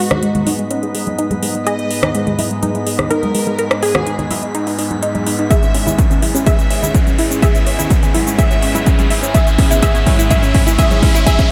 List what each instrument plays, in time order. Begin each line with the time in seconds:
Already playing: analog synth pad G#2 G#3 B3 D#4 D#5, synth texture B3 B6, riser
0.00 violin section F#4, synth pluck F#4
0.11 synth arpeggio sound D#4, cross-stick, low conga
0.23 synth arpeggio sound G#3, closed hi-hat
0.35 synth arpeggio sound G#3, closed hi-hat, low conga
0.46 synth arpeggio sound D#4, open hi-hat, high conga
0.59 synth arpeggio sound G#3, closed hi-hat
0.71 synth arpeggio sound C#4, closed hi-hat
0.83 synth arpeggio sound G#3, closed hi-hat
0.95 synth arpeggio sound G#3, open hi-hat
1.07 synth arpeggio sound G#3, closed hi-hat, high conga
1.19 synth arpeggio sound D#4, closed hi-hat
1.31 synth arpeggio sound G#3, closed hi-hat, high conga
1.43 synth arpeggio sound G#3, open hi-hat
1.55 synth arpeggio sound G#3, closed hi-hat
1.66 synth arpeggio sound G#4, violin section D#5, synth pluck D#5, closed hi-hat
1.79 synth arpeggio sound G#3, closed hi-hat
1.91 synth arpeggio sound G#3, open hi-hat
2.03 synth arpeggio sound D#4, cross-stick, low conga
2.15 synth arpeggio sound G#3, closed hi-hat
2.27 synth arpeggio sound G#3, closed hi-hat, low conga
2.39 synth arpeggio sound E4, open hi-hat, high conga
2.51 synth arpeggio sound G#3, closed hi-hat
2.63 synth arpeggio sound D#4, closed hi-hat, high conga
2.75 synth arpeggio sound G#3, closed hi-hat
2.87 synth arpeggio sound G#3, open hi-hat
2.99 synth arpeggio sound G#3, cross-stick, closed hi-hat, low conga
3.11 synth arpeggio sound D#4, synth pluck A#4, violin section A#4, closed hi-hat
3.23 synth arpeggio sound G#3, closed hi-hat, high conga
3.35 synth arpeggio sound G#3, open hi-hat
3.47 synth arpeggio sound G#3
3.59 synth arpeggio sound A#4, closed hi-hat
3.71 synth arpeggio sound D#4, cross-stick, closed hi-hat
3.82 synth arpeggio sound D#4, violin section G#4, synth pluck G#4, open hi-hat
3.95 synth arpeggio sound F#4, cross-stick, closed hi-hat, low conga
4.07 synth arpeggio sound D#4, closed hi-hat
4.19 synth arpeggio sound D#4, closed hi-hat, low conga
4.30 synth arpeggio sound E4, open hi-hat, high conga
4.43 synth arpeggio sound D#4, closed hi-hat
4.55 synth arpeggio sound D#4, closed hi-hat
4.67 synth arpeggio sound D#4, open hi-hat
4.79 synth arpeggio sound D#4, open hi-hat
4.91 synth arpeggio sound D#4, closed hi-hat, high conga
5.03 synth arpeggio sound D#4, closed hi-hat
5.15 synth arpeggio sound D#4, closed hi-hat, high conga
5.27 synth arpeggio sound D#4, open hi-hat
5.39 synth arpeggio sound D#4, closed hi-hat
5.50 analog synth pad G#2 C#4 E4 G#4, synth arpeggio sound G#4, violin section E5, synth pluck E5, kick, closed hi-hat, high bongo, shaker
5.63 synth arpeggio sound C#4, closed hi-hat, shaker
5.74 synth arpeggio sound C#4, open hi-hat, high bongo
5.87 synth arpeggio sound E4, closed hi-hat, low conga, shaker
5.98 synth arpeggio sound C#4, kick, closed hi-hat, high bongo, shaker
6.10 synth arpeggio sound C#4, closed hi-hat, low conga, shaker
6.22 synth arpeggio sound E4, open hi-hat, high conga
6.35 synth arpeggio sound C#4, closed hi-hat, high bongo, shaker
6.46 synth arpeggio sound G#4, violin section E5, synth pluck E5, kick, closed hi-hat, high conga, shaker
6.58 synth arpeggio sound C#4, closed hi-hat, high bongo, shaker
6.70 synth arpeggio sound C#4, open hi-hat
6.83 synth arpeggio sound E4, closed hi-hat, high bongo, low conga, shaker
6.94 synth arpeggio sound C#4, kick, closed hi-hat, shaker
7.06 synth arpeggio sound C#4, closed hi-hat, high bongo, high conga, shaker
7.18 synth arpeggio sound E4, open hi-hat
7.31 synth arpeggio sound C#4, closed hi-hat, shaker
7.42 synth arpeggio sound G#4, violin section E5, synth pluck E5, kick, closed hi-hat, high bongo, shaker
7.55 synth arpeggio sound C#4, closed hi-hat, shaker
7.66 synth arpeggio sound C#4, open hi-hat, high bongo
7.79 synth arpeggio sound E4, closed hi-hat, low conga, shaker
7.90 synth arpeggio sound C#4, kick, closed hi-hat, high bongo, shaker
8.03 synth arpeggio sound C#4, closed hi-hat, low conga, shaker
8.14 synth arpeggio sound E4, open hi-hat, high bongo, high conga
8.27 synth arpeggio sound C#4, closed hi-hat, shaker
8.38 synth arpeggio sound G#4, violin section E5, synth pluck E5, kick, closed hi-hat, shaker
8.51 synth arpeggio sound C#4, closed hi-hat, high bongo, shaker
8.62 synth arpeggio sound C#4, open hi-hat
8.74 synth arpeggio sound E4, closed hi-hat, high bongo, high conga, shaker
8.86 synth arpeggio sound C#4, kick, closed hi-hat, shaker
8.99 synth arpeggio sound C#4, closed hi-hat, high bongo, high conga, shaker
9.10 synth arpeggio sound E4, open hi-hat
9.23 synth arpeggio sound C#4, closed hi-hat, high bongo, shaker
9.34 synth arpeggio sound G#4, synth pluck E5, violin section E5, kick, closed hi-hat, shaker
9.47 synth arpeggio sound C#4, closed hi-hat, shaker
9.58 synth arpeggio sound C#4, kick, open hi-hat, high bongo
9.71 synth arpeggio sound E4, closed hi-hat, low conga, shaker
9.82 synth arpeggio sound G#4, violin section E5, synth pluck E5, kick, closed hi-hat, shaker
9.95 synth arpeggio sound C#4, closed hi-hat, low conga, shaker
10.06 synth arpeggio sound C#4, kick, open hi-hat, high bongo, high conga
10.19 synth arpeggio sound E4, closed hi-hat, shaker
10.30 synth arpeggio sound G#4, synth pluck E5, violin section E5, kick, closed hi-hat, high bongo, high conga, shaker
10.43 synth arpeggio sound C#4, closed hi-hat, shaker
10.54 synth arpeggio sound C#4, kick, open hi-hat
10.66 synth arpeggio sound E4, closed hi-hat, high bongo, low conga, shaker
10.78 synth arpeggio sound G#4, synth pluck E5, violin section E5, kick, closed hi-hat, shaker
10.91 synth arpeggio sound C#4, closed hi-hat, high bongo, high conga, shaker
11.03 synth arpeggio sound C#4, kick, open hi-hat
11.15 synth arpeggio sound E4, high bongo, shaker
11.26 synth arpeggio sound G#4, synth pluck E5, violin section E5, kick, closed hi-hat, shaker
11.39 synth arpeggio sound C#4, kick, closed hi-hat, high bongo, shaker